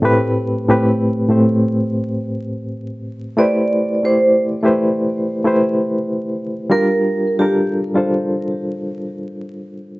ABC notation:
X:1
M:4/4
L:1/16
Q:"Swing 16ths" 1/4=72
K:Am
V:1 name="Vibraphone"
z16 | d3 c2 z8 z3 | _B3 G2 z8 z3 |]
V:2 name="Reed electric piano"
[A,,A,CGB]2 z [A,,A,CGB]2 z [A,,A,CGc]6 z4 | [A,EGBc]2 z [A,EGcd]2 z [A,EGBc]3 z [A,EGBc]4 z2 | [G,DFG_B]2 z [G,DFAB]2 z [G,DFAc]6 z4 |]